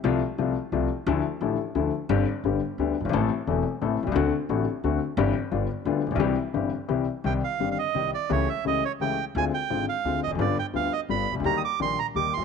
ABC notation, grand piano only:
X:1
M:3/4
L:1/16
Q:1/4=173
K:C
V:1 name="Grand piano" clef=bass
[C,,C,F,A,F]2 z2 [C,,C,F,A,F]2 z2 [C,,C,F,A,F]2 z2 | [D,,D,F,A,E]2 z2 [A,,,A,,D,F,A,E]2 z2 [D,,D,F,A,E]2 z2 | [G,,,G,,D,G,CG]2 z2 [G,,,G,,D,G,B,G]2 z2 [D,,D,G,B,G]2 z/2 ^F,,,/2 G,,,/2 _A,,,/2 | [A,,,A,,E,A,CA]2 z2 [E,,,E,,E,A,CA]2 z2 [A,,,A,,E,A,CA]2 z/2 B,,,/2 C,,/2 _D,,/2 |
[D,,D,A,C^F]2 z2 [A,,,A,,D,A,CF]2 z2 [D,,D,A,CF]2 z2 | [G,,,G,,E,G,CG]2 z2 [G,,,G,,D,G,B,F]2 z2 [D,,D,G,B,F]2 z/2 A,,,/2 _B,,,/2 =B,,,/2 | [C,,C,E,G,CG]2 z2 [G,,,G,,E,G,CG]2 z2 [C,,C,E,G,CG]2 z2 | [K:Cm] [C,,C,E,G,CG]2 z2 [G,,,G,,E,G,CG]2 z2 [C,,C,E,G,CG]2 z2 |
[^C,,^C,=E,=A,^CG]2 z2 [C,,C,E,A,CG]2 z2 [C,,C,E,A,CG]2 z2 | [D,,D,A,CF]2 z2 [A,,,A,,D,A,CF]2 z2 [D,,D,A,CF]2 z/2 =E,,/2 F,,/2 ^F,,/2 | [G,,,G,,D,G,=B,F]2 z2 [D,,D,G,B,F]2 z2 [G,,,G,,D,G,B,F]2 z/2 C,,/2 _D,,/2 =D,,/2 | [E,,E,G,B,G]2 z2 [B,,,B,,E,G,B,G]2 z2 [E,,E,G,B,G]2 z/2 =B,,,/2 z |]